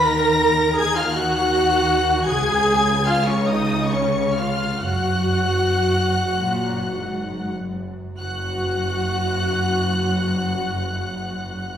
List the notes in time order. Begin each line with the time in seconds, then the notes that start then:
Already playing: D#2 D#3
0.02 A#4 A#5 A#6
0.77 G#4 G#5 G#6
0.96 F4 F5 F6
1.14 F#4 F#5 F#6
2.25 C#2 C#3 G#4 G#5 G#6
3.05 F4 F5 F6
3.25 C#4 C#5 C#6
3.48 D#4 D#5 D#6
3.89 C#4 C#5 C#6
4.36 F4 F5 F6
4.81 F#1 F#2 F#4 F#5 F#6
6.40 A#2
6.96 G#2
7.57 F#2
8.18 F#1 F#2 F#4 F#5 F#6